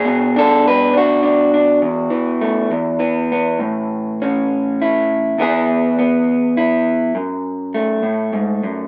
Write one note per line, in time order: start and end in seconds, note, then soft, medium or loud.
0.00 0.34 F#4 soft
0.00 0.95 G#4 medium
0.05 1.82 B2 medium
0.36 0.92 D4 medium
0.36 0.66 A4 medium
0.68 0.95 B4 medium
0.93 1.21 D4 medium
0.97 3.63 F#4 medium
1.23 1.52 D4 medium
1.54 1.79 D4 soft
1.82 2.70 E2 medium
2.10 2.98 E3 medium
2.41 2.71 A3 soft
2.71 3.60 E2 medium
3.00 5.38 E3 medium
3.32 3.58 B3 soft
3.60 5.36 A2 medium
4.22 5.37 C#4 medium
4.82 5.37 E4 medium
5.38 7.15 E2 medium
5.38 7.17 E3 soft
5.38 5.97 B3 medium
5.38 6.56 E4 soft
5.38 7.15 G#4 medium
5.99 7.13 B3 soft
6.57 7.13 E4 medium
7.15 8.03 F#2 medium
7.74 8.88 A3 soft
8.03 8.33 A2 soft
8.33 8.63 G#2 medium
8.63 8.88 F#2 medium